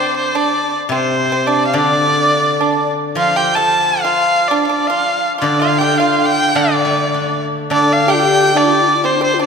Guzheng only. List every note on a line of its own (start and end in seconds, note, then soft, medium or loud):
0.00 0.34 D3 soft
0.89 1.74 C3 medium
1.73 3.46 D3 medium
3.15 4.86 F3 soft
5.42 6.54 D3 medium
6.55 7.69 D3 soft
6.85 8.00 A3 soft
7.14 8.29 D4 soft
7.70 9.40 D3 medium